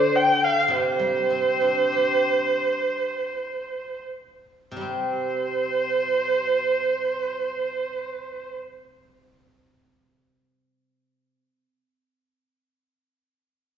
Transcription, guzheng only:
0.00 1.30 D3 soft
0.68 2.57 C3 medium
0.99 2.24 G3 soft
1.30 2.58 C4 soft
1.61 2.92 D4 soft
1.92 3.27 G4 soft
4.72 11.35 C3 soft
4.76 10.83 G3 soft
4.81 9.91 C4 soft

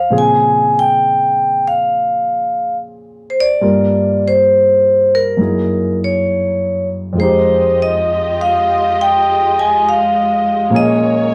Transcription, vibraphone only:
0.00 0.15 F5 medium
0.18 0.76 G#5 medium
0.79 1.65 G5 medium
1.67 2.75 F5 medium
3.30 3.37 C5 medium
3.40 4.28 D5 medium
4.28 5.16 C5 medium
5.15 5.97 A#4 medium
6.04 6.87 C#5 medium
7.20 7.79 C5 medium
7.82 8.40 D#5 medium
8.41 8.99 F5 medium
9.01 9.58 G5 medium
9.59 9.86 G#5 medium
9.89 10.76 F5 medium
10.76 11.35 D#5 medium

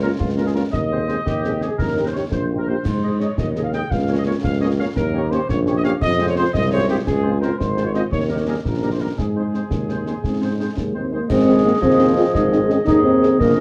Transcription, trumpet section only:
0.02 0.10 A#4 medium
0.19 0.31 F4 medium
0.46 0.50 G#4 medium
0.55 0.63 A#4 medium
0.72 2.27 D#5 medium
2.85 3.17 C5 medium
3.20 3.37 C#5 medium
3.38 3.50 D#5 medium
3.64 3.72 F5 medium
3.74 3.89 G5 medium
3.91 4.17 F5 medium
4.18 4.25 D#5 medium
4.26 4.34 C#5 medium
4.44 4.60 F5 medium
4.61 4.69 D#5 medium
4.78 4.86 F5 medium
4.96 5.29 A#4 medium
5.31 5.49 C5 medium
5.49 5.61 C#5 medium
5.77 5.81 D#5 medium
5.85 5.92 F5 loud
6.02 6.26 D#5 loud
6.29 6.37 C#5 medium
6.37 6.53 C5 medium
6.54 6.70 D#5 medium
6.71 6.88 C#5 medium
6.88 6.97 G4 medium
7.06 7.39 G#4 medium
7.41 7.58 A#4 medium
7.59 7.86 C5 medium
7.86 7.94 C#5 medium
7.95 8.03 D#5 medium
8.12 8.24 C#5 medium
8.41 8.48 C#5 medium
8.48 8.56 G#4 medium
8.65 8.90 A#4 medium
8.92 9.00 C5 medium
9.01 9.18 A#4 medium
9.18 11.12 G#4 medium
11.46 11.52 D#5 medium
11.64 11.71 D#5 medium
11.99 12.05 D#5 medium
12.17 12.23 D#5 medium
12.52 12.58 D#5 medium
12.70 12.76 D#5 medium
13.05 13.11 D#5 medium
13.22 13.28 D#5 medium
13.56 13.60 D#5 medium

